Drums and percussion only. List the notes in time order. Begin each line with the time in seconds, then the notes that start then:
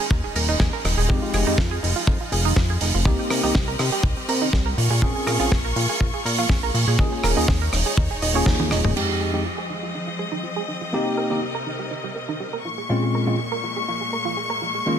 0.11 kick
0.36 open hi-hat
0.60 kick, snare
0.85 cross-stick, open hi-hat
1.10 kick
1.34 cross-stick, open hi-hat
1.58 kick, snare
1.84 open hi-hat
2.07 kick
2.32 open hi-hat
2.56 kick, snare
2.81 open hi-hat
3.05 kick
3.30 cross-stick, open hi-hat
3.55 kick, snare
3.79 cross-stick, open hi-hat
4.03 kick
4.29 open hi-hat
4.53 kick, snare
4.78 open hi-hat
5.02 kick
5.27 cross-stick, open hi-hat
5.52 kick, snare
5.76 open hi-hat
6.01 kick
6.26 open hi-hat
6.49 kick, snare
6.75 open hi-hat
6.99 kick
7.24 cross-stick, open hi-hat
7.48 kick, snare
7.73 cross-stick, open hi-hat
7.97 kick
8.22 open hi-hat
8.46 kick, snare, high tom
8.60 high tom
8.71 cross-stick, open hi-hat
8.85 mid tom
8.97 crash